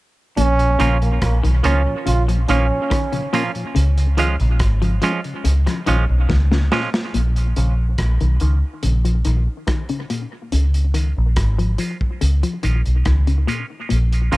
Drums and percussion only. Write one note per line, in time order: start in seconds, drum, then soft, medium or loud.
0.37 closed hi-hat medium
0.59 closed hi-hat soft
0.80 closed hi-hat medium
1.02 closed hi-hat soft
1.22 kick loud
1.22 cross-stick loud
1.22 closed hi-hat medium
1.44 closed hi-hat soft
1.64 closed hi-hat medium
2.07 closed hi-hat loud
2.29 closed hi-hat soft
2.48 closed hi-hat medium
2.91 kick loud
2.91 cross-stick loud
2.91 closed hi-hat medium
3.13 closed hi-hat soft
3.34 closed hi-hat medium
3.55 closed hi-hat soft
3.76 closed hi-hat medium
3.98 closed hi-hat soft
4.18 closed hi-hat medium
4.40 closed hi-hat soft
4.60 kick loud
4.60 cross-stick loud
4.60 closed hi-hat medium
4.82 closed hi-hat soft
5.02 closed hi-hat medium
5.24 closed hi-hat soft
5.45 closed hi-hat loud
5.67 cross-stick medium
5.67 closed hi-hat medium
5.87 closed hi-hat medium
6.30 kick loud
6.30 snare medium
6.52 snare medium
6.72 snare medium
6.94 snare medium
7.14 closed hi-hat medium
7.36 closed hi-hat soft
7.56 closed hi-hat medium
7.98 kick loud
7.98 cross-stick medium
7.98 closed hi-hat medium
8.20 closed hi-hat soft
8.40 closed hi-hat medium
8.83 closed hi-hat medium
9.05 closed hi-hat medium
9.25 closed hi-hat medium
9.67 kick loud
9.67 cross-stick loud
9.67 closed hi-hat medium
9.89 closed hi-hat soft
10.10 closed hi-hat medium
10.52 closed hi-hat medium
10.74 closed hi-hat soft
10.94 closed hi-hat medium
11.36 kick loud
11.36 cross-stick loud
11.36 closed hi-hat medium
11.59 closed hi-hat soft
11.78 closed hi-hat medium
12.01 kick medium
12.21 closed hi-hat loud
12.43 closed hi-hat medium
12.63 closed hi-hat medium
12.86 closed hi-hat soft
13.05 kick medium
13.05 cross-stick loud
13.05 closed hi-hat medium
13.27 closed hi-hat medium
13.48 closed hi-hat medium
13.90 closed hi-hat medium
14.12 closed hi-hat medium
14.32 closed hi-hat medium